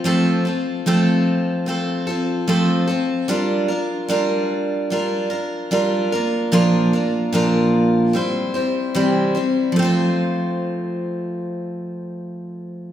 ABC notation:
X:1
M:4/4
L:1/8
Q:1/4=74
K:F
V:1 name="Steel-string acoustic guitar"
[F,A,CFA] [CFA] [F,A,CFA]2 [A,CFA] [CFA] [F,A,CFA] [CFA] | [G,DFB] [DFB] [G,DFB]2 [G,DFB] [DFB] [G,DFB] [B,DFB] | [B,,F,B,DFB] [B,DFB] [B,,F,B,DFB]2 [G,CEc] [G,CEc] [C,E,G,CEc] [G,CEc] | [F,A,CFc]8 |]